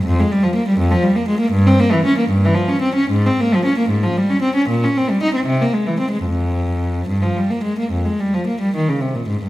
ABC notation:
X:1
M:12/8
L:1/16
Q:3/8=77
K:Fm
V:1 name="Cello" clef=bass
F,, A, G, F, B, G, F,, F, G, B, A, B, G,, C B, =E, D B, G,, E, F, D C D | A,, C B, F, D B, A,, F, G, D C D B,, D C G, E C C, B, A, =E, C A, | F,,6 G,, F, G, B, A, B, F,, A, G, F, B, G, E, D, C, B,, A,, G,, |]